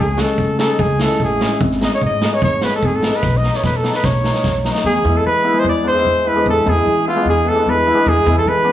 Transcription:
0.00 0.21 C#2 medium
0.00 0.15 G#3 medium
0.00 0.23 G#4 medium
0.16 0.58 G#3 medium
0.16 0.27 C#4 medium
0.16 0.27 F#4 medium
0.16 snare medium
0.21 0.60 A4 medium
0.38 0.62 C#3 medium
0.38 kick medium
0.59 0.98 G#3 medium
0.59 0.69 C#4 medium
0.59 0.69 D#4 medium
0.59 0.82 A4 medium
0.59 snare medium
0.79 1.03 C#2 medium
0.79 1.04 G#4 medium
0.79 kick medium
0.99 1.38 G#3 medium
0.99 1.09 C#4 medium
0.99 1.10 E4 medium
0.99 1.21 A4 medium
0.99 snare medium
1.10 snare soft
1.20 1.44 A1 medium
1.20 1.60 G#4 medium
1.20 kick medium
1.40 1.65 G#3 medium
1.40 1.50 C#4 medium
1.40 1.50 E4 medium
1.40 snare medium
1.61 1.85 G#1 medium
1.61 kick medium
1.71 snare soft
1.81 2.20 G#3 medium
1.81 1.91 B3 medium
1.81 1.91 D#4 medium
1.81 1.92 D#5 medium
1.81 snare medium
1.95 2.02 C#5 medium
2.02 2.26 G#2 medium
2.02 2.36 D#5 medium
2.02 kick medium
2.21 2.61 G#3 medium
2.21 2.32 B3 medium
2.21 2.32 D#4 medium
2.21 snare loud
2.34 2.43 C#5 medium
2.42 2.66 G#1 medium
2.42 2.66 C#5 medium
2.42 kick medium
2.61 3.02 G#3 medium
2.61 2.73 B3 medium
2.61 2.73 F#4 medium
2.61 2.74 B4 medium
2.61 snare medium
2.72 2.87 A4 medium
2.72 snare soft
2.82 3.07 G#1 medium
2.82 2.97 G#4 medium
2.82 kick medium
2.95 3.17 A4 medium
3.02 3.28 G#3 medium
3.02 3.14 B3 medium
3.02 3.14 D#4 medium
3.02 snare medium
3.12 3.39 B4 medium
3.12 snare soft
3.22 3.47 B1 loud
3.22 kick medium
3.22 snare soft
3.37 3.58 D#5 medium
3.43 3.82 F#3 medium
3.43 3.54 B3 medium
3.43 3.54 D#4 medium
3.43 snare soft
3.53 3.65 C#5 medium
3.53 snare soft
3.63 3.88 B2 medium
3.63 3.78 B4 medium
3.63 kick medium
3.63 snare medium
3.77 3.95 A4 medium
3.83 4.10 F#3 medium
3.83 3.94 B3 medium
3.83 3.94 D#4 medium
3.83 snare medium
3.93 4.07 B4 medium
3.93 snare soft
4.03 4.28 B1 medium
4.03 4.66 C#5 medium
4.03 kick medium
4.03 snare medium
4.24 4.63 F#3 medium
4.24 4.35 B3 soft
4.24 4.35 D#4 medium
4.24 snare medium
4.34 snare soft
4.43 4.68 B1 medium
4.43 kick medium
4.43 snare medium
4.64 4.90 F#3 medium
4.64 4.75 B3 medium
4.64 4.75 D#4 medium
4.64 snare medium
4.75 snare medium
4.84 4.97 E2 loud
4.84 5.19 G#4 medium
5.03 5.17 E2 loud
5.03 5.52 G#3 medium
5.03 5.15 B3 medium
5.03 5.15 E4 medium
5.17 5.26 A4 medium
5.25 5.49 E3 medium
5.25 5.61 B4 loud
5.44 5.50 B3 medium
5.44 5.50 E4 medium
5.53 5.93 G#3 medium
5.53 5.65 B3 medium
5.53 5.65 E4 medium
5.59 5.68 C5 loud
5.64 5.89 E2 loud
5.69 5.86 D5 medium
5.83 5.90 B3 medium
5.83 5.90 D4 medium
5.88 6.29 C5 loud
5.94 6.34 G#3 medium
5.94 6.05 B3 medium
5.94 6.05 E4 medium
6.05 6.29 E2 medium
6.25 6.31 B3 medium
6.25 6.31 E4 medium
6.25 6.47 B4 medium
6.35 6.64 G#3 medium
6.35 6.46 B3 medium
6.35 6.46 D4 medium
6.46 6.58 E2 loud
6.46 6.71 A4 medium
6.64 6.79 E2 loud
6.64 7.15 G#3 medium
6.64 6.76 B3 medium
6.64 6.76 E4 medium
6.69 7.08 G#4 loud
6.86 7.10 E3 medium
7.07 7.12 B3 medium
7.07 7.12 E4 medium
7.07 7.26 F4 medium
7.16 7.54 G#3 medium
7.16 7.26 B3 medium
7.16 7.26 D4 medium
7.25 7.49 E2 medium
7.29 7.50 G#4 medium
7.45 7.51 B3 medium
7.45 7.51 E4 medium
7.45 7.71 A4 medium
7.55 7.93 G#3 medium
7.55 7.66 B3 medium
7.55 7.66 D4 medium
7.66 7.90 E2 medium
7.66 8.10 B4 medium
7.86 7.91 B3 medium
7.86 7.91 E4 medium
7.94 8.24 G#3 medium
7.94 8.05 B3 medium
7.94 8.05 D4 medium
8.06 8.18 E2 loud
8.06 8.38 G#4 loud
8.25 8.38 E2 loud
8.25 8.72 G#3 medium
8.25 8.36 B3 medium
8.25 8.36 E4 medium
8.39 8.50 A4 medium
8.46 8.70 E3 medium
8.46 8.72 B4 loud
8.64 8.70 B3 medium
8.64 8.70 D4 medium

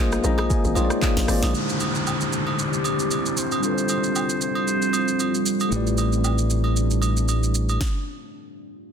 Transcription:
0.00 0.22 A#1 loud
0.00 1.53 G#3 medium
0.00 0.23 A#3 medium
0.00 1.52 A#3 medium
0.00 1.53 D#4 medium
0.00 0.24 F4 medium
0.00 0.25 G#4 medium
0.00 0.26 C5 medium
0.00 0.27 D#5 loud
0.12 cross-stick loud
0.12 shaker medium
0.23 0.49 A#1 loud
0.23 0.66 A#3 medium
0.23 0.67 F4 medium
0.23 0.67 G#4 medium
0.23 0.68 C5 medium
0.23 0.68 D#5 loud
0.23 0.49 A#5 medium
0.23 shaker loud
0.38 cross-stick loud
0.38 high agogo medium
0.50 0.75 G#5 medium
0.50 kick loud
0.50 shaker medium
0.65 0.76 G#1 medium
0.65 shaker medium
0.75 0.90 A#1 medium
0.75 1.18 A#3 medium
0.75 1.19 F4 medium
0.75 1.19 G#4 medium
0.75 1.20 C5 medium
0.75 0.84 C#5 medium
0.75 1.01 G5 medium
0.75 high agogo medium
0.75 shaker medium
0.85 1.23 D5 loud
0.90 cross-stick loud
0.90 shaker medium
1.02 1.27 F5 medium
1.02 kick loud
1.02 clap loud
1.02 high agogo medium
1.02 shaker medium
1.17 1.28 A#1 medium
1.17 snare medium
1.17 shaker medium
1.27 1.42 G#1 medium
1.27 1.49 A#3 loud
1.27 1.50 F4 medium
1.27 1.50 G#4 medium
1.27 1.50 C5 medium
1.27 1.51 D5 loud
1.27 1.53 D#5 medium
1.27 cross-stick loud
1.27 open hi-hat loud
1.27 shaker loud
1.43 1.54 A#1 medium
1.43 snare medium
1.43 high agogo medium
1.43 shaker medium
1.51 3.57 D3 medium
1.51 3.61 D3 medium
1.51 5.68 C4 medium
1.51 3.58 D4 medium
1.51 3.61 E4 medium
1.51 3.61 G4 medium
1.51 downlifter medium
1.51 shaker medium
1.55 2.29 G4 medium
1.55 3.60 G4 medium
1.55 3.61 C5 medium
1.69 shaker medium
1.80 high agogo medium
1.80 shaker medium
1.95 shaker soft
2.07 high agogo medium
2.07 low woodblock medium
2.07 shaker medium
2.21 shaker medium
2.33 2.57 A4 medium
2.33 shaker medium
2.47 high agogo medium
2.59 3.39 D5 loud
2.59 shaker medium
2.73 shaker soft
2.84 high agogo medium
2.84 shaker medium
2.99 shaker medium
3.11 high agogo medium
3.11 shaker medium
3.26 shaker medium
3.37 3.63 C5 medium
3.37 shaker loud
3.51 high agogo medium
3.51 shaker soft
3.60 5.66 G3 medium
3.60 5.70 G3 medium
3.60 5.67 D4 medium
3.60 5.70 F4 medium
3.60 5.68 F4 medium
3.60 4.38 C5 loud
3.60 shaker medium
3.66 5.69 A4 medium
3.66 3.72 B4 medium
3.74 5.73 C5 medium
3.78 shaker medium
3.89 high agogo medium
3.89 shaker medium
4.04 shaker soft
4.16 high agogo medium
4.16 low woodblock medium
4.16 shaker medium
4.29 shaker medium
4.41 5.42 C5 loud
4.41 shaker medium
4.55 high agogo medium
4.68 shaker medium
4.82 shaker soft
4.93 high agogo medium
4.93 shaker medium
5.08 shaker medium
5.20 high agogo medium
5.20 shaker medium
5.34 shaker medium
5.46 shaker loud
5.60 high agogo medium
5.60 shaker soft
5.69 7.77 A1 medium
5.69 7.79 G3 medium
5.69 7.75 A3 medium
5.69 7.79 A3 medium
5.69 7.79 D4 medium
5.69 7.76 E4 medium
5.69 7.77 G4 medium
5.69 shaker medium
5.74 7.78 B4 medium
5.74 7.79 D5 medium
5.87 shaker medium
5.98 high agogo medium
5.98 shaker medium
6.12 shaker soft
6.24 high agogo medium
6.24 low woodblock medium
6.24 shaker medium
6.38 shaker medium
6.50 shaker medium
6.64 high agogo medium
6.76 shaker medium
6.91 shaker medium
7.02 high agogo medium
7.02 shaker medium
7.17 shaker medium
7.28 high agogo medium
7.28 shaker medium
7.43 shaker medium
7.55 shaker loud
7.69 high agogo medium
7.69 shaker soft
7.81 kick loud
7.81 snare medium

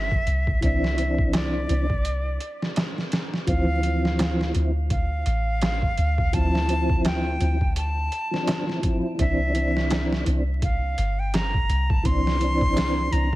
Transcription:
0.00 0.24 G1 medium
0.00 0.63 E5 loud
0.12 kick medium
0.27 0.59 C2 medium
0.27 closed hi-hat medium
0.47 kick medium
0.61 1.67 C2 medium
0.61 0.94 E3 medium
0.61 0.95 C4 medium
0.61 1.36 E5 loud
0.61 kick loud
0.61 closed hi-hat medium
0.65 0.96 D4 medium
0.84 snare medium
0.97 1.65 E3 medium
0.97 1.66 C4 medium
0.97 closed hi-hat medium
1.01 1.67 D4 medium
1.18 kick medium
1.33 2.77 D5 medium
1.33 snare loud
1.33 closed hi-hat medium
1.33 darbuka tek medium
1.68 2.38 C2 medium
1.68 1.84 E3 medium
1.68 1.86 C4 medium
1.68 closed hi-hat medium
1.73 1.87 D4 medium
1.90 kick medium
2.05 closed hi-hat medium
2.40 closed hi-hat medium
2.62 snare soft
2.76 snare loud
2.76 closed hi-hat medium
2.76 darbuka tek medium
2.98 snare soft
3.12 snare medium
3.12 closed hi-hat medium
3.34 snare soft
3.46 4.52 D2 medium
3.46 3.79 F3 medium
3.46 3.80 C4 medium
3.46 4.51 F5 loud
3.46 kick medium
3.46 closed hi-hat medium
3.51 3.82 E3 medium
3.82 4.51 F3 medium
3.82 4.52 C4 medium
3.82 closed hi-hat medium
3.87 4.53 E3 medium
4.05 snare soft
4.19 snare loud
4.19 closed hi-hat medium
4.19 darbuka tek medium
4.41 snare medium
4.54 5.24 D2 medium
4.54 4.70 F3 medium
4.54 4.71 C4 medium
4.54 closed hi-hat medium
4.58 4.72 E4 medium
4.90 6.35 F5 loud
4.90 kick loud
4.90 closed hi-hat medium
5.26 5.95 A1 loud
5.26 closed hi-hat medium
5.62 snare loud
5.62 closed hi-hat medium
5.62 darbuka tek medium
5.82 kick medium
5.97 6.30 D2 loud
5.97 closed hi-hat medium
6.18 kick medium
6.32 7.38 D2 medium
6.32 6.65 F3 medium
6.32 6.66 C4 medium
6.32 7.05 A5 loud
6.32 kick loud
6.32 closed hi-hat medium
6.37 6.67 E4 medium
6.55 snare medium
6.68 7.36 F3 medium
6.68 7.38 C4 medium
6.68 closed hi-hat medium
6.72 7.39 E4 medium
6.90 kick medium
7.05 7.73 G5 medium
7.05 snare loud
7.05 closed hi-hat medium
7.05 darbuka tek medium
7.39 8.09 D2 medium
7.39 7.56 F3 medium
7.39 7.57 C4 medium
7.39 closed hi-hat medium
7.44 7.58 E4 medium
7.61 kick medium
7.76 8.80 A5 loud
7.76 closed hi-hat medium
8.12 closed hi-hat medium
8.31 8.63 F3 medium
8.31 8.64 C4 medium
8.31 snare soft
8.36 8.65 D4 medium
8.47 snare loud
8.47 closed hi-hat medium
8.47 darbuka tek medium
8.66 8.79 F3 medium
8.66 8.80 C4 medium
8.66 snare soft
8.71 8.81 E4 loud
8.82 9.15 F3 medium
8.82 9.16 C4 medium
8.82 kick medium
8.82 closed hi-hat medium
8.86 9.17 E4 loud
9.17 10.24 C2 medium
9.17 9.51 E3 medium
9.17 9.52 C4 medium
9.17 10.23 E5 loud
9.17 kick medium
9.17 closed hi-hat medium
9.22 9.53 D4 medium
9.53 10.22 E3 medium
9.53 10.23 C4 medium
9.53 closed hi-hat medium
9.58 10.24 D4 medium
9.77 snare soft
9.90 snare loud
9.90 closed hi-hat medium
9.90 darbuka tek medium
10.12 snare medium
10.25 10.95 C2 medium
10.25 10.42 E3 medium
10.25 10.43 C4 medium
10.25 closed hi-hat medium
10.30 10.44 D4 medium
10.62 11.21 F5 medium
10.62 kick loud
10.62 closed hi-hat medium
10.98 11.67 G1 medium
10.98 closed hi-hat medium
11.19 11.36 G5 medium
11.34 11.92 A#5 loud
11.34 snare loud
11.34 closed hi-hat medium
11.34 darbuka tek medium
11.54 kick medium
11.69 12.01 C2 loud
11.69 closed hi-hat medium
11.90 12.07 A5 medium
11.90 kick medium
12.03 13.09 C2 loud
12.03 12.36 E3 medium
12.03 12.37 C4 medium
12.03 13.14 C6 loud
12.03 kick medium
12.03 closed hi-hat medium
12.08 12.39 D4 medium
12.27 snare soft
12.39 13.08 E3 medium
12.39 13.09 C4 medium
12.39 closed hi-hat medium
12.44 13.10 D4 loud
12.61 kick medium
12.76 snare loud
12.76 closed hi-hat medium
12.76 darbuka tek medium
13.11 13.36 C2 medium
13.11 13.27 E3 medium
13.11 13.28 C4 medium
13.11 13.36 A#5 loud
13.11 closed hi-hat medium
13.15 13.29 D4 medium

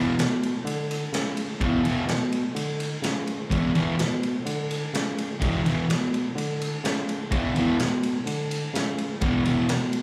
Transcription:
0.00 0.13 E2 medium
0.00 0.13 B2 loud
0.00 0.14 E3 loud
0.17 0.53 B2 medium
0.17 snare loud
0.17 ride loud
0.43 ride medium
0.64 1.00 D3 loud
0.64 ride medium
0.91 ride medium
1.12 1.48 C#3 medium
1.12 snare loud
1.12 ride loud
1.37 ride medium
1.60 1.79 E2 medium
1.60 1.96 E2 medium
1.60 1.80 B2 medium
1.60 1.80 E3 loud
1.60 kick loud
1.60 ride medium
1.84 2.03 E2 loud
1.84 2.03 B2 medium
1.84 2.04 E3 loud
1.84 ride medium
2.07 2.43 B2 medium
2.07 snare loud
2.07 ride medium
2.32 ride medium
2.55 2.90 D3 medium
2.55 ride medium
2.80 ride medium
3.02 3.38 C#3 medium
3.02 snare loud
3.02 ride medium
3.27 ride medium
3.50 3.69 E2 medium
3.50 3.87 E2 loud
3.50 3.70 B2 loud
3.50 3.70 E3 medium
3.50 kick medium
3.50 ride medium
3.75 3.94 E2 medium
3.75 3.94 B2 loud
3.75 3.94 E3 loud
3.75 ride medium
3.99 4.34 B2 medium
3.99 snare loud
3.99 ride loud
4.23 ride medium
4.45 4.81 D3 loud
4.45 ride medium
4.71 ride medium
4.94 5.29 C#3 medium
4.94 snare loud
4.94 ride medium
5.18 ride medium
5.41 5.60 E2 medium
5.41 5.77 E2 loud
5.41 5.60 B2 loud
5.41 5.61 E3 loud
5.41 kick loud
5.41 ride loud
5.65 5.84 E2 medium
5.65 5.84 B2 medium
5.65 5.85 E3 loud
5.65 ride medium
5.89 6.24 B2 medium
5.89 snare loud
5.89 ride loud
6.14 ride medium
6.36 6.71 D3 medium
6.36 ride medium
6.61 ride medium
6.84 7.19 C#3 medium
6.84 snare loud
6.84 ride medium
7.09 ride medium
7.31 7.50 E2 medium
7.31 7.68 E2 loud
7.31 7.51 B2 loud
7.31 7.51 E3 loud
7.31 kick loud
7.31 ride medium
7.55 7.74 E2 medium
7.55 7.74 B2 loud
7.55 7.75 E3 loud
7.55 ride medium
7.80 8.15 B2 medium
7.80 snare loud
7.80 ride loud
8.03 ride medium
8.26 8.62 D3 medium
8.26 ride medium
8.51 ride medium
8.73 9.09 C#3 medium
8.73 snare loud
8.73 ride medium
8.98 ride medium
9.21 9.41 E2 medium
9.21 9.58 E2 medium
9.21 9.41 B2 loud
9.21 9.42 E3 loud
9.21 kick loud
9.21 ride medium
9.45 9.64 E2 medium
9.45 9.65 B2 loud
9.45 9.65 E3 loud
9.45 ride medium
9.69 10.02 B2 medium
9.69 snare loud
9.69 ride loud
9.93 ride medium

